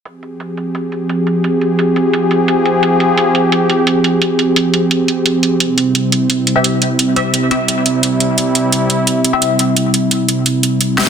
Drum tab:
HH |xxxxxxxx|xxxxxxxx|xxxxxxxx|xxxxxxxx|
SD |--------|--------|--------|--------|

HH |xxxxxxxx|xxxxxxxx|xxxxxxxx|xxxxxxxx|
SD |--------|--------|--------|-------o|